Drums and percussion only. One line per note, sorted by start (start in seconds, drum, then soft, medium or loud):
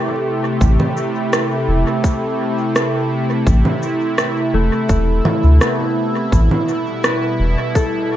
0.61 kick loud
0.61 cabasa medium
0.80 low conga medium
0.97 cabasa soft
1.33 cross-stick medium
1.33 cabasa medium
2.04 kick loud
2.04 cabasa medium
2.76 cross-stick medium
2.76 cabasa medium
3.47 kick loud
3.47 cabasa medium
3.65 low conga medium
3.83 cabasa soft
4.18 cross-stick medium
4.18 cabasa soft
4.89 kick loud
4.89 cabasa soft
5.25 low conga medium
5.61 cross-stick medium
5.61 cabasa medium
6.32 kick loud
6.32 cabasa medium
6.51 low conga medium
6.69 cabasa soft
7.04 cross-stick medium
7.04 cabasa soft
7.75 kick loud
7.75 cabasa soft